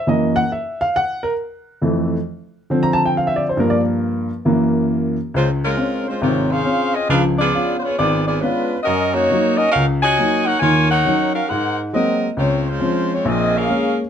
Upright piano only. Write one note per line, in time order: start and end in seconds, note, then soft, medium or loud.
0.07 0.40 F#2 medium
0.07 0.40 E3 medium
0.07 0.41 A#3 medium
0.07 0.36 D#5 medium
0.36 0.49 F#5 loud
0.52 0.80 E5 medium
0.81 0.94 F5 loud
0.96 1.24 F#5 loud
1.23 1.32 A#4 medium
1.82 2.15 F2 medium
1.82 2.16 E3 medium
1.82 2.16 A3 medium
2.70 3.54 D3 medium
2.70 3.54 F3 medium
2.70 3.54 C4 medium
2.83 2.98 A#5 medium
2.93 3.03 A5 loud
3.05 3.13 G5 medium
3.17 3.30 F5 medium
3.27 3.42 E5 medium
3.36 3.47 D5 medium
3.49 3.57 C5 medium
3.57 4.27 G2 medium
3.57 4.28 F3 soft
3.57 4.28 A#3 medium
3.57 3.73 A#4 medium
3.70 3.80 D5 medium
4.45 5.16 F#2 medium
4.45 5.16 E3 medium
4.45 5.16 A#3 medium
5.34 5.72 C#2 medium
5.77 6.09 C4 medium
5.77 6.09 C#4 soft
5.77 6.09 F4 medium
6.22 6.60 G#1 medium
6.22 6.60 C3 medium
6.65 6.97 C4 medium
6.65 6.97 C#4 medium
6.65 6.97 F4 medium
7.09 7.48 C#2 medium
7.09 7.48 F3 medium
7.54 7.85 B3 soft
7.54 7.85 C#4 soft
7.54 7.85 D4 soft
7.54 7.85 F4 medium
7.99 8.37 G#1 medium
8.42 8.73 B3 medium
8.42 8.74 C#4 soft
8.42 8.74 D4 medium
8.42 8.74 F4 medium
8.87 9.24 F#2 medium
9.31 9.61 F#3 medium
9.31 9.61 A#3 soft
9.31 9.62 D#4 medium
9.75 10.13 C#2 medium
10.18 10.49 F#3 medium
10.18 10.49 A#3 soft
10.18 10.50 D#4 medium
10.62 11.00 D#2 medium
10.62 11.00 D#3 medium
11.05 11.37 F#3 medium
11.05 11.37 C#4 soft
11.05 11.37 D#4 medium
11.51 11.89 G#2 medium
11.93 12.25 F#3 medium
11.93 12.25 G#3 soft
11.93 12.25 A#3 soft
11.93 12.25 C4 medium
12.37 12.76 C#2 medium
12.80 13.12 F3 medium
12.80 13.12 C4 medium
12.80 13.13 C#4 medium
13.25 13.64 A#1 medium
13.25 13.63 A#2 medium
13.68 14.00 G#3 medium
13.68 14.01 A#3 soft
13.68 14.01 C#4 medium